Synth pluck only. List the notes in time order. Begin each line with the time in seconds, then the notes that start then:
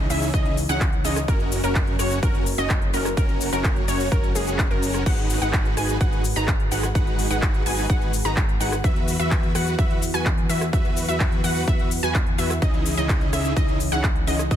0.10 E5
0.34 D#5
0.69 F#5
1.05 D#5
1.28 A#4
1.64 A#4
1.99 C#5
2.23 A#4
2.58 D#5
2.94 A#4
3.17 A#4
3.53 A#4
3.88 C#5
4.12 A#4
4.35 G#4
4.71 A#4
5.06 F#5
5.42 F#5
5.77 G#5
6.01 F#5
6.36 A#5
6.72 F#5
6.95 F#5
7.31 F#5
7.66 G#5
7.90 F#5
8.25 A#5
8.60 F#5
8.84 E5
9.20 E5
9.55 F#5
9.79 E5
10.14 G#5
10.49 E5
10.73 E5
11.08 E5
11.44 F#5
11.68 E5
12.03 G#5
12.38 E5
12.62 D#5
12.97 D#5
13.33 E5
13.56 D#5
13.92 F#5
14.27 D#5
14.51 D#5